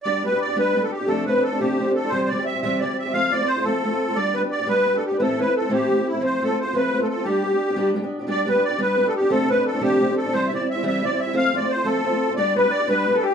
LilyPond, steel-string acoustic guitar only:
\new Staff \with { instrumentName = "Steel-string acoustic guitar" } { \time 6/8 \key g \mixolydian \tempo 4. = 117 <g b d' g'>8 <g b d' g'>16 <b d' g'>8 <b d' g'>16 <g b d' g'>8 <g b d' g'>16 <b d' g'>8 <b d' g'>16 | <f, c f a c' d'>8 <f a c' d'>16 <f a c' d'>8 <f a c' d'>16 <f, c f a c' d'>8 <f a c' d'>16 <f a c' d'>8 <f a c' d'>16 | <c e g c' g'>8 <e g c' g'>16 <g c' g'>8 <g c' g'>16 <c e g c' g'>8 <e g c' g'>16 <g c' g'>8 <g c' g'>16 | <f a c' f'>8 <f a c' f'>16 <a c' f'>8 <a c' f'>16 <f a c' f'>8 <f a c' f'>16 <a c' f'>8 <a c' f'>16 |
<g b d' g'>8 <g b d' g'>16 <b d' g'>8 <b d' g'>16 <g b d' g'>8 <g b d' g'>16 <b d' g'>8 <b d' g'>16 | <a, e a c' e'>8 <e a c' e'>16 <a c' e'>8 <a c' e'>16 <a, e a c' e'>8 <e a c' e'>16 <a c' e'>8 <a c' e'>16 | <f a c' f'>8 <f a c' f'>16 <a c' f'>8 <a c' f'>16 <f a c' f'>8 <f a c' f'>16 <a c' f'>8 <a c' f'>16 | <g b d' g'>8 <g b d' g'>16 <b d' g'>8 <b d' g'>16 <g b d' g'>8 <g b d' g'>16 <b d' g'>8 <b d' g'>16 |
<g b d' g'>8 <g b d' g'>16 <b d' g'>8 <b d' g'>16 <g b d' g'>8 <g b d' g'>16 <b d' g'>8 <b d' g'>16 | <f, c f a c' d'>8 <f a c' d'>16 <f a c' d'>8 <f a c' d'>16 <f, c f a c' d'>8 <f a c' d'>16 <f a c' d'>8 <f a c' d'>16 | <c e g c' e'>8 <e g c' e'>16 <g c' e'>8 <g c' e'>16 <c e g c' e'>8 <e g c' e'>16 <g c' e'>8 <g c' e'>16 | <f a c' f'>8 <f a c' f'>16 <a c' f'>8 <a c' f'>16 <f a c' f'>8 <f a c' f'>16 <a c' f'>8 <a c' f'>16 |
<g b d' g'>8 <g b d' g'>16 <b d' g'>8 <b d' g'>16 <g b d' g'>8 <g b d' g'>16 <b d' g'>8 g'16 | }